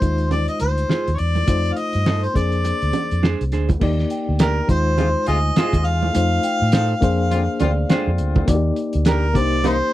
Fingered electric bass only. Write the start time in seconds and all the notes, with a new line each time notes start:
0.02 D#2
0.62 D2
1.08 D#2
1.20 E2
1.48 F2
1.95 G2
2.36 F2
2.83 D2
3.12 F2
3.41 C2
3.54 D2
3.82 D#2
4.29 D2
4.69 D#2
5.28 D2
5.74 D#2
5.87 E2
6.16 F2
6.62 A2
7.02 F2
7.61 D2
8.07 F2
8.20 D2
8.48 D#2
8.95 D2
9.36 C2